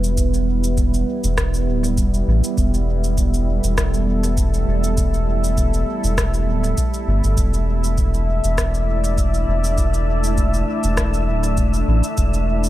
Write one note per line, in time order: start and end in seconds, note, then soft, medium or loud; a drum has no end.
0.00 1.05 E1 loud
0.00 7.38 G3 medium
0.00 9.10 B3 medium
0.00 12.69 E4 medium
0.00 2.51 B4 medium
0.00 12.69 E5 medium
0.00 shaker soft
0.18 kick loud
0.18 shaker medium
0.34 shaker soft
0.64 shaker soft
0.78 kick loud
0.78 shaker medium
0.94 shaker soft
1.24 1.69 E1 medium
1.24 shaker soft
1.38 kick loud
1.38 cross-stick loud
1.38 shaker medium
1.54 shaker soft
1.67 1.99 D1 loud
1.84 shaker soft
1.98 2.24 E1 medium
1.98 kick loud
1.98 shaker medium
2.14 shaker soft
2.27 2.42 A1 loud
2.33 9.65 A4 medium
2.44 shaker soft
2.57 3.61 E1 loud
2.57 kick loud
2.57 shaker medium
2.74 shaker soft
3.04 shaker soft
3.18 kick loud
3.18 shaker medium
3.34 shaker soft
3.64 4.65 E1 medium
3.64 shaker soft
3.78 kick loud
3.78 cross-stick loud
3.78 shaker medium
3.94 shaker soft
4.24 shaker soft
4.37 kick loud
4.37 shaker medium
4.54 shaker soft
4.67 5.85 E1 loud
4.84 shaker soft
4.98 kick loud
4.98 shaker medium
5.14 shaker soft
5.44 shaker soft
5.58 kick loud
5.58 shaker soft
5.74 shaker soft
6.04 6.49 E1 medium
6.04 shaker soft
6.18 kick loud
6.18 cross-stick loud
6.18 shaker medium
6.34 shaker soft
6.47 6.74 D1 loud
6.64 shaker soft
6.78 kick loud
6.78 shaker medium
6.94 shaker soft
7.08 7.22 G1 medium
7.24 7.36 G1 loud
7.24 shaker soft
7.37 8.41 E1 loud
7.37 12.69 A3 medium
7.37 12.69 E4 medium
7.37 12.69 E5 medium
7.37 kick loud
7.37 shaker medium
7.54 shaker soft
7.61 12.69 D4 medium
7.61 12.69 D5 medium
7.84 shaker soft
7.98 kick loud
7.98 shaker soft
8.14 shaker soft
8.44 9.45 E1 medium
8.44 shaker soft
8.58 kick loud
8.58 cross-stick medium
8.58 shaker soft
8.74 shaker soft
9.04 shaker soft
9.18 kick loud
9.18 shaker medium
9.34 shaker soft
9.48 10.65 E1 loud
9.64 shaker soft
9.78 kick loud
9.78 shaker medium
9.94 shaker soft
10.24 shaker soft
10.38 kick loud
10.38 shaker medium
10.54 shaker soft
10.84 11.29 E1 medium
10.84 shaker soft
10.97 kick loud
10.97 cross-stick medium
10.97 shaker medium
11.14 shaker soft
11.28 11.59 D1 loud
11.44 shaker soft
11.57 11.84 E1 loud
11.57 kick loud
11.57 shaker soft
11.74 shaker soft
11.88 12.02 A1 loud
12.04 shaker soft
12.17 12.69 E1 loud
12.17 kick loud
12.17 shaker medium
12.34 shaker soft
12.64 shaker soft